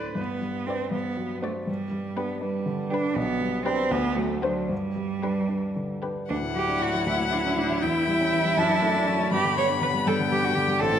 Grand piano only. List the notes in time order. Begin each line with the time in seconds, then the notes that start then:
Already playing: D2 A2 F#3 D4 A4
0.15 G2
0.41 G3
0.67 D4 B4
0.91 G2
1.17 F#3
1.42 D4 C5
1.67 G2
1.91 G3
2.17 D4 B4
2.41 D4 B4
2.66 D3
2.90 D4 B4
3.16 B1
3.41 G3
3.66 D4 B4
3.91 D2
4.16 F#3
4.44 D4 C5
4.69 G2
4.96 G3
5.23 D4 B4
5.48 D4 B4
5.76 D3
6.03 D4 B4
6.30 D2
6.42 A2
6.55 F#3
6.69 D4
6.81 A2
6.94 F#3
7.06 D2
7.20 A2
7.32 F#3
7.45 D4
7.57 A2
7.70 F#3
7.83 E2
7.96 E3
8.08 G3
8.20 C#4
8.32 E3
8.45 G3
8.57 F#2
8.69 F#3
8.82 A3
8.95 D4
9.08 F#3
9.19 A3
9.31 G2
9.44 D3
9.57 G3
9.70 D4
9.81 D3
9.94 G3
10.07 G2
10.19 D3
10.31 G3
10.43 D4
10.55 D3
10.68 G3
10.80 A1
10.93 A2